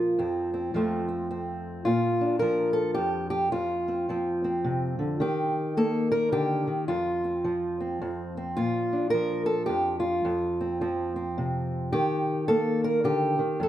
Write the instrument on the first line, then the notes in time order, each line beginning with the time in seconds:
steel-string acoustic guitar
Already playing: A#2 F3 F4
0.19 F2 C4
0.54 C4
0.74 F2 F3 A3 C4
1.09 C4
1.31 C4
1.85 A#2 F4
2.21 D4
2.39 F3 A#4
2.73 A4
2.94 F2 G4
3.30 G4
3.52 F2 F4
3.88 C4
4.09 F3 C4
4.44 C4
4.64 C3
4.99 D3
5.20 D#3 G4
5.77 A#3 A4
6.12 A#4
6.32 D3 G4
6.67 D#3
6.88 F2 F4
7.24 C4
7.44 F3
7.80 C4
8.02 F2
8.37 C4
8.57 A#2 F4
8.93 D4
9.10 F3 A#4
9.46 A4
9.66 F2 G4
10.00 F4
10.25 F2
10.61 C4
10.81 F3 C4
11.16 C4
11.38 C3
11.93 D#3 G4
12.48 A#3 A4
12.84 A#4
13.04 D3 G4
13.39 D#3
13.60 F2 A4